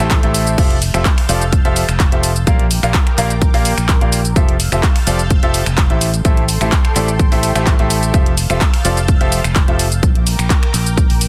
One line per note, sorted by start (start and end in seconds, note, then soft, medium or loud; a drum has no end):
0.00 0.19 A1 loud
0.00 0.17 A3 loud
0.00 0.17 E4 medium
0.00 0.17 G4 medium
0.00 0.17 A4 medium
0.00 0.56 A4 medium
0.00 0.17 C5 medium
0.00 0.17 E5 loud
0.00 0.56 G5 medium
0.00 0.56 C6 medium
0.11 kick loud
0.11 clap loud
0.11 closed hi-hat medium
0.11 shaker soft
0.23 0.55 A1 loud
0.23 0.55 A3 medium
0.23 0.55 E4 medium
0.23 0.55 G4 medium
0.23 0.55 A4 medium
0.23 0.55 C5 medium
0.23 0.55 E5 loud
0.23 closed hi-hat medium
0.34 open hi-hat loud
0.34 shaker medium
0.47 closed hi-hat soft
0.47 shaker soft
0.58 0.90 F1 loud
0.58 0.76 F3 medium
0.58 0.76 F4 medium
0.58 0.76 G4 medium
0.58 0.76 A4 medium
0.58 0.76 C5 medium
0.58 0.76 E5 medium
0.58 2.45 F5 medium
0.58 2.45 E6 medium
0.58 2.45 G6 medium
0.58 2.45 A6 loud
0.58 kick loud
0.58 closed hi-hat medium
0.58 crash medium
0.58 shaker soft
0.70 closed hi-hat medium
0.82 open hi-hat loud
0.82 shaker medium
0.94 1.03 F1 loud
0.94 1.04 F3 medium
0.94 1.04 F4 medium
0.94 1.04 G4 medium
0.94 1.04 A4 medium
0.94 1.04 C5 medium
0.94 1.04 E5 medium
0.94 finger snap medium
0.94 shaker soft
1.05 kick loud
1.05 clap loud
1.05 closed hi-hat medium
1.05 shaker soft
1.18 finger snap medium
1.18 open hi-hat medium
1.29 1.61 F1 loud
1.29 1.40 F3 loud
1.29 1.40 F4 loud
1.29 1.40 G4 medium
1.29 1.40 A4 medium
1.29 1.40 C5 medium
1.29 1.40 D5 loud
1.29 open hi-hat loud
1.29 shaker medium
1.41 closed hi-hat soft
1.41 shaker soft
1.53 kick loud
1.53 closed hi-hat medium
1.53 shaker soft
1.65 1.84 F1 medium
1.65 1.82 F3 medium
1.65 1.82 F4 medium
1.65 1.82 G4 medium
1.65 1.82 A4 medium
1.65 1.82 C5 medium
1.65 1.82 E5 loud
1.65 closed hi-hat medium
1.76 open hi-hat loud
1.76 shaker medium
1.89 2.08 F1 medium
1.89 finger snap medium
1.89 shaker soft
2.00 kick loud
2.00 clap loud
2.00 closed hi-hat medium
2.00 shaker soft
2.12 2.44 F1 loud
2.12 2.29 F3 medium
2.12 2.29 F4 medium
2.12 2.29 G4 medium
2.12 2.29 A4 medium
2.12 2.29 C5 medium
2.12 2.29 E5 medium
2.12 closed hi-hat medium
2.23 open hi-hat loud
2.23 shaker medium
2.36 closed hi-hat soft
2.36 shaker soft
2.47 2.79 A#1 loud
2.47 2.65 A#3 medium
2.47 2.65 F4 medium
2.47 2.65 G4 medium
2.47 4.34 A#4 medium
2.47 2.65 A#4 medium
2.47 2.65 D5 medium
2.47 2.65 F5 medium
2.47 4.34 G5 medium
2.47 4.34 D6 loud
2.47 kick loud
2.47 closed hi-hat medium
2.47 shaker soft
2.59 closed hi-hat medium
2.71 open hi-hat loud
2.71 shaker medium
2.83 2.92 A#1 loud
2.83 2.93 A#3 medium
2.83 2.93 F4 medium
2.83 2.93 G4 medium
2.83 2.93 A#4 medium
2.83 2.93 D5 medium
2.83 2.93 F5 medium
2.83 finger snap medium
2.83 shaker soft
2.94 kick loud
2.94 clap loud
2.94 closed hi-hat medium
2.94 shaker soft
3.07 finger snap medium
3.07 closed hi-hat soft
3.18 3.50 A#1 loud
3.18 3.29 A#3 loud
3.18 3.29 F4 medium
3.18 3.29 G4 medium
3.18 3.29 A#4 medium
3.18 3.29 D5 medium
3.18 3.29 F5 loud
3.18 clap soft
3.18 open hi-hat loud
3.18 shaker medium
3.30 closed hi-hat soft
3.30 shaker soft
3.42 kick loud
3.42 closed hi-hat medium
3.42 shaker soft
3.54 3.73 A#1 medium
3.54 3.71 A#3 loud
3.54 3.71 F4 medium
3.54 3.71 G4 medium
3.54 3.71 A#4 medium
3.54 3.71 D5 medium
3.54 3.71 F5 loud
3.54 open hi-hat medium
3.65 open hi-hat loud
3.65 shaker medium
3.78 3.97 A#1 medium
3.78 finger snap medium
3.78 closed hi-hat soft
3.78 shaker soft
3.89 kick loud
3.89 clap loud
3.89 closed hi-hat medium
3.89 shaker soft
4.01 4.33 A#1 loud
4.01 4.18 A#3 medium
4.01 4.18 F4 medium
4.01 4.18 G4 medium
4.01 4.18 A#4 medium
4.01 4.18 D5 medium
4.01 4.18 F5 medium
4.01 closed hi-hat medium
4.12 open hi-hat loud
4.12 shaker medium
4.25 closed hi-hat soft
4.25 shaker soft
4.36 4.54 F3 medium
4.36 4.54 F4 medium
4.36 4.54 G4 medium
4.36 4.54 A4 medium
4.36 4.54 C5 medium
4.36 4.54 E5 medium
4.36 6.00 F5 medium
4.36 6.00 E6 medium
4.36 6.00 G6 medium
4.36 6.00 A6 loud
4.36 kick loud
4.36 closed hi-hat medium
4.36 shaker soft
4.49 closed hi-hat medium
4.60 open hi-hat loud
4.60 shaker medium
4.72 4.81 F1 loud
4.72 4.82 F3 medium
4.72 4.82 F4 medium
4.72 4.82 G4 medium
4.72 4.82 A4 medium
4.72 4.82 C5 medium
4.72 4.82 E5 medium
4.72 finger snap medium
4.72 shaker soft
4.83 kick loud
4.83 clap loud
4.83 closed hi-hat medium
4.83 shaker soft
4.96 finger snap medium
4.96 open hi-hat medium
5.07 5.39 F1 loud
5.07 5.18 F3 loud
5.07 5.18 F4 medium
5.07 5.18 G4 medium
5.07 5.18 A4 medium
5.07 5.18 C5 medium
5.07 5.18 D5 loud
5.07 open hi-hat loud
5.07 shaker medium
5.19 closed hi-hat soft
5.19 shaker soft
5.30 kick loud
5.30 closed hi-hat medium
5.30 shaker soft
5.43 5.62 F1 medium
5.43 5.60 F3 loud
5.43 5.60 F4 medium
5.43 5.60 G4 medium
5.43 5.60 A4 medium
5.43 5.60 C5 medium
5.43 5.60 E5 loud
5.43 closed hi-hat medium
5.54 open hi-hat loud
5.54 shaker medium
5.66 5.85 F1 medium
5.66 finger snap medium
5.66 closed hi-hat soft
5.66 shaker soft
5.78 kick loud
5.78 clap loud
5.78 closed hi-hat medium
5.78 shaker soft
5.90 6.22 A1 loud
5.90 6.07 A3 medium
5.90 6.07 E4 medium
5.90 6.07 G4 medium
5.90 6.07 A4 medium
5.90 6.07 C5 medium
5.90 6.07 E5 medium
5.90 closed hi-hat medium
6.01 8.12 A4 medium
6.01 8.12 G5 medium
6.01 8.12 C6 medium
6.01 open hi-hat loud
6.01 shaker medium
6.14 closed hi-hat soft
6.14 shaker soft
6.25 6.57 A1 loud
6.25 6.43 A3 medium
6.25 6.43 E4 medium
6.25 6.43 G4 medium
6.25 6.43 A4 medium
6.25 6.43 C5 medium
6.25 6.43 E5 medium
6.25 kick loud
6.25 closed hi-hat medium
6.25 shaker soft
6.37 closed hi-hat soft
6.49 open hi-hat loud
6.49 shaker medium
6.61 6.70 A1 loud
6.61 6.71 A3 medium
6.61 6.71 E4 medium
6.61 6.71 G4 medium
6.61 6.71 A4 medium
6.61 6.71 C5 medium
6.61 6.71 E5 medium
6.61 finger snap medium
6.61 shaker soft
6.72 kick loud
6.72 clap loud
6.72 closed hi-hat medium
6.72 shaker soft
6.85 finger snap medium
6.85 closed hi-hat soft
6.96 7.28 A1 loud
6.96 7.07 A3 loud
6.96 7.07 E4 medium
6.96 7.07 G4 medium
6.96 7.07 A4 medium
6.96 7.07 C5 medium
6.96 7.07 D5 loud
6.96 clap soft
6.96 open hi-hat loud
6.96 shaker medium
7.08 closed hi-hat soft
7.08 shaker soft
7.19 kick loud
7.19 closed hi-hat medium
7.19 shaker soft
7.32 7.51 A1 medium
7.32 7.49 A3 medium
7.32 7.49 E4 medium
7.32 7.49 G4 medium
7.32 7.49 A4 medium
7.32 7.49 C5 medium
7.32 7.49 E5 loud
7.32 open hi-hat medium
7.43 open hi-hat loud
7.43 shaker medium
7.55 7.74 A1 medium
7.55 7.72 A3 medium
7.55 7.72 E4 medium
7.55 7.72 G4 medium
7.55 7.72 A4 medium
7.55 7.72 C5 medium
7.55 7.72 E5 loud
7.55 finger snap medium
7.55 closed hi-hat soft
7.55 shaker soft
7.67 kick loud
7.67 clap loud
7.67 closed hi-hat medium
7.67 shaker soft
7.79 8.11 A1 medium
7.79 8.11 A3 medium
7.79 8.11 E4 medium
7.79 8.11 G4 medium
7.79 8.11 A4 medium
7.79 8.11 C5 medium
7.79 8.11 E5 loud
7.79 closed hi-hat medium
7.90 open hi-hat loud
7.90 shaker medium
8.03 closed hi-hat soft
8.03 shaker soft
8.14 8.46 F1 loud
8.14 8.31 F3 medium
8.14 8.31 F4 medium
8.14 8.31 G4 medium
8.14 8.31 A4 medium
8.14 8.32 C5 medium
8.14 8.32 E5 medium
8.14 10.01 F5 medium
8.14 10.01 E6 medium
8.14 10.01 G6 medium
8.14 10.01 A6 loud
8.14 kick loud
8.14 closed hi-hat medium
8.14 shaker soft
8.26 closed hi-hat medium
8.37 open hi-hat loud
8.37 shaker medium
8.50 8.59 F1 medium
8.50 8.60 F3 medium
8.50 8.60 F4 medium
8.50 8.60 G4 medium
8.50 8.60 A4 medium
8.50 8.60 C5 medium
8.50 8.60 E5 medium
8.50 finger snap medium
8.50 shaker soft
8.61 kick loud
8.61 clap loud
8.61 closed hi-hat medium
8.61 shaker soft
8.74 finger snap medium
8.74 open hi-hat medium
8.85 9.17 F1 loud
8.85 8.96 F3 loud
8.85 8.96 F4 medium
8.85 8.96 G4 medium
8.85 8.96 A4 medium
8.85 8.96 C5 medium
8.85 8.96 D5 loud
8.85 open hi-hat loud
8.85 shaker medium
8.97 closed hi-hat soft
8.97 shaker soft
9.08 kick loud
9.08 closed hi-hat medium
9.08 shaker soft
9.21 9.40 F1 medium
9.21 9.38 F3 medium
9.21 9.38 F4 medium
9.21 9.38 G4 medium
9.21 9.38 A4 medium
9.21 9.38 C5 medium
9.21 9.38 E5 loud
9.21 closed hi-hat medium
9.32 open hi-hat loud
9.32 shaker medium
9.44 9.63 F1 medium
9.44 finger snap medium
9.44 closed hi-hat soft
9.44 shaker soft
9.56 kick loud
9.56 clap loud
9.56 closed hi-hat medium
9.56 shaker soft
9.68 10.00 F1 medium
9.68 9.85 F3 medium
9.68 9.85 F4 medium
9.68 9.85 G4 medium
9.68 9.85 A4 medium
9.68 9.85 C5 medium
9.68 9.85 E5 medium
9.68 closed hi-hat medium
9.79 open hi-hat loud
9.79 shaker medium
9.92 closed hi-hat soft
9.92 shaker soft
10.03 10.35 A#1 loud
10.03 11.28 A#4 medium
10.03 11.28 G5 medium
10.03 11.28 D6 medium
10.03 kick loud
10.03 closed hi-hat medium
10.03 shaker soft
10.15 closed hi-hat medium
10.27 open hi-hat loud
10.27 shaker medium
10.39 10.48 A#1 medium
10.39 finger snap medium
10.39 shaker soft
10.50 kick loud
10.50 clap loud
10.50 closed hi-hat medium
10.50 shaker soft
10.63 finger snap medium
10.63 closed hi-hat medium
10.74 11.06 A#1 loud
10.74 clap soft
10.74 open hi-hat loud
10.74 shaker medium
10.86 closed hi-hat soft
10.86 shaker soft
10.97 kick loud
10.97 closed hi-hat medium
10.97 shaker soft
11.10 11.28 A#1 medium
11.10 open hi-hat medium
11.21 open hi-hat loud
11.21 shaker medium